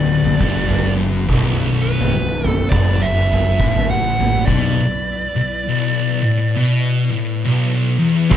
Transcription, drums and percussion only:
0, 0, Header, 1, 2, 480
1, 0, Start_track
1, 0, Key_signature, 2, "minor"
1, 0, Tempo, 878477
1, 704, Time_signature, 4, 2, 24, 8
1, 4572, End_track
2, 0, Start_track
2, 0, Title_t, "Drums"
2, 133, Note_on_c, 9, 43, 85
2, 187, Note_off_c, 9, 43, 0
2, 222, Note_on_c, 9, 36, 97
2, 277, Note_off_c, 9, 36, 0
2, 377, Note_on_c, 9, 43, 89
2, 431, Note_off_c, 9, 43, 0
2, 703, Note_on_c, 9, 36, 101
2, 704, Note_on_c, 9, 43, 84
2, 758, Note_off_c, 9, 36, 0
2, 758, Note_off_c, 9, 43, 0
2, 1096, Note_on_c, 9, 43, 88
2, 1150, Note_off_c, 9, 43, 0
2, 1336, Note_on_c, 9, 43, 102
2, 1390, Note_off_c, 9, 43, 0
2, 1485, Note_on_c, 9, 36, 114
2, 1487, Note_on_c, 9, 47, 84
2, 1540, Note_off_c, 9, 36, 0
2, 1542, Note_off_c, 9, 47, 0
2, 1816, Note_on_c, 9, 43, 81
2, 1871, Note_off_c, 9, 43, 0
2, 1965, Note_on_c, 9, 36, 100
2, 2019, Note_off_c, 9, 36, 0
2, 2055, Note_on_c, 9, 43, 89
2, 2110, Note_off_c, 9, 43, 0
2, 2295, Note_on_c, 9, 43, 90
2, 2349, Note_off_c, 9, 43, 0
2, 2445, Note_on_c, 9, 36, 103
2, 2500, Note_off_c, 9, 36, 0
2, 4541, Note_on_c, 9, 36, 112
2, 4542, Note_on_c, 9, 49, 127
2, 4572, Note_off_c, 9, 36, 0
2, 4572, Note_off_c, 9, 49, 0
2, 4572, End_track
0, 0, End_of_file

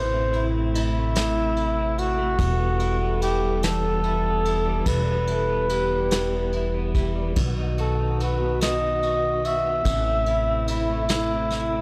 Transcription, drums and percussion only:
0, 0, Header, 1, 2, 480
1, 0, Start_track
1, 0, Key_signature, 1, "minor"
1, 0, Tempo, 827586
1, 1384, Time_signature, 6, 3, 24, 8
1, 6853, End_track
2, 0, Start_track
2, 0, Title_t, "Drums"
2, 193, Note_on_c, 9, 51, 40
2, 251, Note_off_c, 9, 51, 0
2, 435, Note_on_c, 9, 51, 54
2, 493, Note_off_c, 9, 51, 0
2, 669, Note_on_c, 9, 51, 77
2, 676, Note_on_c, 9, 38, 89
2, 727, Note_off_c, 9, 51, 0
2, 734, Note_off_c, 9, 38, 0
2, 907, Note_on_c, 9, 51, 37
2, 965, Note_off_c, 9, 51, 0
2, 1150, Note_on_c, 9, 51, 44
2, 1208, Note_off_c, 9, 51, 0
2, 1385, Note_on_c, 9, 36, 93
2, 1385, Note_on_c, 9, 51, 79
2, 1443, Note_off_c, 9, 36, 0
2, 1443, Note_off_c, 9, 51, 0
2, 1622, Note_on_c, 9, 51, 44
2, 1680, Note_off_c, 9, 51, 0
2, 1866, Note_on_c, 9, 51, 53
2, 1924, Note_off_c, 9, 51, 0
2, 2104, Note_on_c, 9, 51, 69
2, 2111, Note_on_c, 9, 38, 87
2, 2162, Note_off_c, 9, 51, 0
2, 2169, Note_off_c, 9, 38, 0
2, 2340, Note_on_c, 9, 51, 35
2, 2398, Note_off_c, 9, 51, 0
2, 2582, Note_on_c, 9, 51, 45
2, 2640, Note_off_c, 9, 51, 0
2, 2819, Note_on_c, 9, 36, 100
2, 2819, Note_on_c, 9, 51, 81
2, 2877, Note_off_c, 9, 36, 0
2, 2877, Note_off_c, 9, 51, 0
2, 3058, Note_on_c, 9, 51, 42
2, 3116, Note_off_c, 9, 51, 0
2, 3303, Note_on_c, 9, 51, 53
2, 3361, Note_off_c, 9, 51, 0
2, 3543, Note_on_c, 9, 51, 70
2, 3550, Note_on_c, 9, 38, 90
2, 3601, Note_off_c, 9, 51, 0
2, 3608, Note_off_c, 9, 38, 0
2, 3784, Note_on_c, 9, 51, 35
2, 3842, Note_off_c, 9, 51, 0
2, 4030, Note_on_c, 9, 36, 70
2, 4030, Note_on_c, 9, 51, 41
2, 4088, Note_off_c, 9, 36, 0
2, 4088, Note_off_c, 9, 51, 0
2, 4269, Note_on_c, 9, 51, 78
2, 4272, Note_on_c, 9, 36, 94
2, 4327, Note_off_c, 9, 51, 0
2, 4330, Note_off_c, 9, 36, 0
2, 4512, Note_on_c, 9, 51, 43
2, 4570, Note_off_c, 9, 51, 0
2, 4756, Note_on_c, 9, 51, 49
2, 4814, Note_off_c, 9, 51, 0
2, 4995, Note_on_c, 9, 51, 73
2, 5002, Note_on_c, 9, 38, 80
2, 5053, Note_off_c, 9, 51, 0
2, 5060, Note_off_c, 9, 38, 0
2, 5235, Note_on_c, 9, 51, 35
2, 5293, Note_off_c, 9, 51, 0
2, 5480, Note_on_c, 9, 51, 40
2, 5538, Note_off_c, 9, 51, 0
2, 5714, Note_on_c, 9, 51, 82
2, 5715, Note_on_c, 9, 36, 94
2, 5772, Note_off_c, 9, 51, 0
2, 5773, Note_off_c, 9, 36, 0
2, 5951, Note_on_c, 9, 51, 42
2, 6009, Note_off_c, 9, 51, 0
2, 6192, Note_on_c, 9, 51, 55
2, 6250, Note_off_c, 9, 51, 0
2, 6430, Note_on_c, 9, 51, 69
2, 6437, Note_on_c, 9, 38, 96
2, 6488, Note_off_c, 9, 51, 0
2, 6495, Note_off_c, 9, 38, 0
2, 6670, Note_on_c, 9, 51, 38
2, 6677, Note_on_c, 9, 38, 34
2, 6728, Note_off_c, 9, 51, 0
2, 6735, Note_off_c, 9, 38, 0
2, 6853, End_track
0, 0, End_of_file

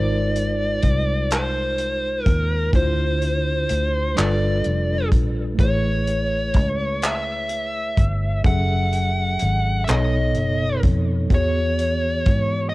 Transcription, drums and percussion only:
0, 0, Header, 1, 2, 480
1, 0, Start_track
1, 0, Tempo, 952381
1, 1377, Time_signature, 6, 3, 24, 8
1, 6423, End_track
2, 0, Start_track
2, 0, Title_t, "Drums"
2, 180, Note_on_c, 9, 42, 56
2, 230, Note_off_c, 9, 42, 0
2, 415, Note_on_c, 9, 42, 75
2, 420, Note_on_c, 9, 36, 82
2, 465, Note_off_c, 9, 42, 0
2, 470, Note_off_c, 9, 36, 0
2, 658, Note_on_c, 9, 42, 69
2, 668, Note_on_c, 9, 39, 104
2, 708, Note_off_c, 9, 42, 0
2, 718, Note_off_c, 9, 39, 0
2, 897, Note_on_c, 9, 42, 49
2, 947, Note_off_c, 9, 42, 0
2, 1139, Note_on_c, 9, 42, 64
2, 1140, Note_on_c, 9, 36, 96
2, 1190, Note_off_c, 9, 36, 0
2, 1190, Note_off_c, 9, 42, 0
2, 1377, Note_on_c, 9, 36, 110
2, 1377, Note_on_c, 9, 42, 70
2, 1427, Note_off_c, 9, 36, 0
2, 1428, Note_off_c, 9, 42, 0
2, 1621, Note_on_c, 9, 42, 59
2, 1671, Note_off_c, 9, 42, 0
2, 1860, Note_on_c, 9, 42, 81
2, 1910, Note_off_c, 9, 42, 0
2, 2100, Note_on_c, 9, 42, 77
2, 2110, Note_on_c, 9, 39, 119
2, 2150, Note_off_c, 9, 42, 0
2, 2160, Note_off_c, 9, 39, 0
2, 2338, Note_on_c, 9, 42, 48
2, 2389, Note_off_c, 9, 42, 0
2, 2579, Note_on_c, 9, 36, 87
2, 2579, Note_on_c, 9, 42, 69
2, 2629, Note_off_c, 9, 42, 0
2, 2630, Note_off_c, 9, 36, 0
2, 2817, Note_on_c, 9, 36, 99
2, 2818, Note_on_c, 9, 42, 67
2, 2867, Note_off_c, 9, 36, 0
2, 2869, Note_off_c, 9, 42, 0
2, 3060, Note_on_c, 9, 42, 50
2, 3111, Note_off_c, 9, 42, 0
2, 3295, Note_on_c, 9, 42, 78
2, 3300, Note_on_c, 9, 36, 93
2, 3346, Note_off_c, 9, 42, 0
2, 3350, Note_off_c, 9, 36, 0
2, 3538, Note_on_c, 9, 42, 72
2, 3548, Note_on_c, 9, 39, 111
2, 3589, Note_off_c, 9, 42, 0
2, 3599, Note_off_c, 9, 39, 0
2, 3776, Note_on_c, 9, 42, 48
2, 3826, Note_off_c, 9, 42, 0
2, 4019, Note_on_c, 9, 36, 93
2, 4019, Note_on_c, 9, 42, 64
2, 4069, Note_off_c, 9, 36, 0
2, 4069, Note_off_c, 9, 42, 0
2, 4256, Note_on_c, 9, 36, 105
2, 4256, Note_on_c, 9, 42, 72
2, 4307, Note_off_c, 9, 36, 0
2, 4307, Note_off_c, 9, 42, 0
2, 4498, Note_on_c, 9, 42, 54
2, 4548, Note_off_c, 9, 42, 0
2, 4733, Note_on_c, 9, 42, 75
2, 4783, Note_off_c, 9, 42, 0
2, 4975, Note_on_c, 9, 42, 75
2, 4985, Note_on_c, 9, 39, 108
2, 5026, Note_off_c, 9, 42, 0
2, 5036, Note_off_c, 9, 39, 0
2, 5213, Note_on_c, 9, 42, 50
2, 5264, Note_off_c, 9, 42, 0
2, 5458, Note_on_c, 9, 42, 70
2, 5460, Note_on_c, 9, 36, 91
2, 5509, Note_off_c, 9, 42, 0
2, 5510, Note_off_c, 9, 36, 0
2, 5697, Note_on_c, 9, 36, 109
2, 5699, Note_on_c, 9, 42, 71
2, 5748, Note_off_c, 9, 36, 0
2, 5749, Note_off_c, 9, 42, 0
2, 5941, Note_on_c, 9, 42, 58
2, 5991, Note_off_c, 9, 42, 0
2, 6178, Note_on_c, 9, 42, 73
2, 6181, Note_on_c, 9, 36, 96
2, 6228, Note_off_c, 9, 42, 0
2, 6232, Note_off_c, 9, 36, 0
2, 6423, End_track
0, 0, End_of_file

